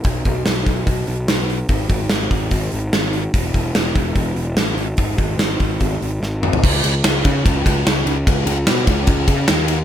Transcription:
0.04 B1, kick, open hi-hat
0.25 B1, kick, open hi-hat
0.46 B1, snare, open hi-hat
0.66 B1, kick, open hi-hat
0.87 B1, kick, open hi-hat
1.07 B1, open hi-hat
1.28 B1, snare, open hi-hat
1.50 open hi-hat
1.69 G#1, kick, open hi-hat
1.89 G#1, kick, open hi-hat
2.10 G#1, snare, open hi-hat
2.31 G#1, kick, open hi-hat
2.51 G#1, kick, open hi-hat
2.72 G#1, open hi-hat
2.93 G#1, snare, open hi-hat
3.13 open hi-hat
3.34 E1, kick, open hi-hat
3.54 E1, kick, open hi-hat
3.75 E1, snare, open hi-hat
3.95 E1, kick, open hi-hat
4.15 E1, kick, open hi-hat
4.36 E1, open hi-hat
4.56 A1, snare, open hi-hat
4.76 G#1, open hi-hat
4.97 G#1, kick, open hi-hat
5.18 G#1, kick, open hi-hat
5.38 G#1, snare, open hi-hat
5.60 G#1, kick, open hi-hat
5.80 G#1, kick, open hi-hat
6.02 G#1, open hi-hat
6.21 G#1, snare
6.43 mid tom
6.53 floor tom
6.64 C#2, kick, crash
6.84 C#2, ride
7.04 C#2, snare, ride
7.25 C#3, kick, ride
7.45 C#2, kick, ride
7.66 C#2, kick, ride
7.87 C#2, snare, ride
8.05 C#2, ride
8.27 C#2, kick, ride
8.46 C#2, ride
8.67 B2, snare, ride
8.87 C#2, kick, ride
9.07 C#2, kick, ride
9.28 C#3, kick, ride
9.48 D#2, snare, ride
9.68 ride

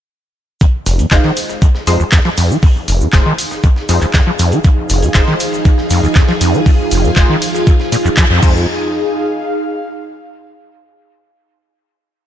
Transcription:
0.61 F2 D#4, kick, closed hi-hat, shaker
0.86 F1, closed hi-hat, open hi-hat, shaker
0.97 F2 G#4, closed hi-hat, shaker
1.11 F1 G#3 D#4 F4 C5, kick, snare, clap, closed hi-hat, shaker
1.21 D#3 F5, snare
1.37 closed hi-hat, open hi-hat, shaker
1.49 snare, shaker
1.62 F2, kick, closed hi-hat, shaker
1.75 snare
1.87 F2 G#3 D#4 F4 C5, closed hi-hat, open hi-hat, shaker
2.00 D#2, shaker
2.12 F2, kick, snare, clap, closed hi-hat, shaker
2.25 F3, snare
2.37 F2, closed hi-hat, open hi-hat, shaker
2.50 F3, shaker
2.62 F2, kick, open hi-hat, shaker
2.88 F1, closed hi-hat, open hi-hat, shaker
3.01 F2, shaker
3.13 F1 G#3 D#4 F4 C5, kick, snare, clap, closed hi-hat, shaker
3.26 D#3
3.38 closed hi-hat, open hi-hat, shaker
3.51 snare, shaker
3.63 F2, kick, closed hi-hat, shaker
3.76 snare
3.89 F2 G#3 D#4 F4 C5, closed hi-hat, open hi-hat, shaker
4.01 D#2, clap, shaker
4.13 F2, kick, snare, clap, closed hi-hat, shaker
4.27 F3
4.39 F2, closed hi-hat, open hi-hat, shaker
4.52 F3, closed hi-hat, shaker
4.64 F2 F3 D#4 G#4, kick, closed hi-hat, shaker
4.90 F1, closed hi-hat, open hi-hat, shaker
5.02 F2, closed hi-hat, shaker
5.14 F1 G#3 D#4 F4 C5, kick, snare, clap, closed hi-hat, shaker
5.28 D#3, snare
5.40 closed hi-hat, open hi-hat, shaker
5.53 snare, shaker
5.65 F2, kick, closed hi-hat, shaker
5.78 snare
5.90 F2, closed hi-hat, open hi-hat, shaker
6.03 D#2, shaker
6.15 F2, kick, snare, clap, closed hi-hat, shaker
6.29 F3, snare
6.41 F2, closed hi-hat, open hi-hat, shaker
6.54 F3, shaker
6.66 F2 F4, kick, open hi-hat, shaker
6.91 F1, closed hi-hat, open hi-hat, shaker
7.04 F2, shaker
7.16 F1 G#3 D#4 F4 C5, kick, snare, clap, closed hi-hat, shaker
7.29 D#3
7.42 closed hi-hat, open hi-hat, shaker
7.54 snare, shaker
7.67 F2, kick, closed hi-hat, shaker
7.80 snare
7.92 A#2, closed hi-hat, open hi-hat, shaker
8.04 F2, clap, shaker
8.17 F3, kick, snare, clap, closed hi-hat, shaker
8.30 F2
8.43 F2 G#3 D#4 F4 C5 D#5 G#5, kick, crash, shaker
8.50 G#4
8.56 shaker
8.83 F5

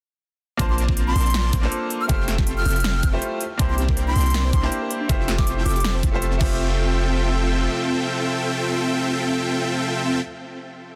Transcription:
0.57 A#1 A#3 C4 D4 F4 A#4 C5 D5 A5 C6, kick, closed hi-hat
0.69 C6
0.78 closed hi-hat
0.89 kick
0.97 closed hi-hat
1.07 C6
1.16 A#1 C4 F4 A#4 D5 A5, open hi-hat
1.21 closed hi-hat
1.26 closed hi-hat
1.30 closed hi-hat
1.34 snare, closed hi-hat
1.53 A#1 C4 F4 A#4 D5 G5, kick, closed hi-hat
1.61 A#3 D4 F4 A4 C5, snare
1.72 closed hi-hat
1.90 closed hi-hat
2.01 F6
2.07 F1 A3 C4 F4 G4 A4 E5 G5 F6, kick, closed hi-hat
2.11 C5
2.28 snare, closed hi-hat
2.38 kick, snare
2.47 closed hi-hat
2.57 F6
2.65 F1 C4 F4 A4 E5 G5, open hi-hat
2.71 closed hi-hat
2.76 closed hi-hat
2.80 closed hi-hat
2.84 snare, closed hi-hat
3.03 F1 C4 F4 A4 E5 G5, kick, closed hi-hat
3.12 A3 E4 F4 G4 C5
3.22 closed hi-hat
3.41 closed hi-hat
3.58 C2 A#3 C4 D4 E4 G4 A#4 D5 G5 C6, kick, closed hi-hat
3.62 C5
3.70 E4 C6
3.78 G4, closed hi-hat
3.89 A#4, kick
3.97 C5, closed hi-hat
4.07 D4 C6
4.15 C2 C4 E4 A#4 D5 G5, open hi-hat
4.21 closed hi-hat
4.26 G4, closed hi-hat
4.30 closed hi-hat
4.34 A#4, snare, closed hi-hat
4.45 C5
4.53 C2 C4 D4 E4 A#4 D5 E5 C6, kick, closed hi-hat
4.62 A#3 D4 E4 G4 C5, snare
4.72 G4, closed hi-hat
4.82 A#4
4.90 C5, closed hi-hat
5.01 D4
5.08 F1 A3 C4 F4 G4 A4 E5 G5, kick, closed hi-hat
5.12 C5
5.20 F4
5.28 G4, snare, closed hi-hat
5.38 A4 D6, kick, snare
5.47 C5, closed hi-hat
5.57 E4
5.65 F1 C4 F4 A4 E5 G5 D6, open hi-hat
5.71 closed hi-hat
5.76 G4, closed hi-hat
5.80 closed hi-hat
5.84 A4, snare, closed hi-hat
5.95 C5
6.03 F1 C4 E4 F4 A4 E5 A5, kick, closed hi-hat
6.11 A3 F4 G4 E5
6.16 C5
6.22 G4, closed hi-hat
6.32 A4
6.37 F1 A3 C4 F4 A4 E5 G5, kick, crash
6.42 G4 C5

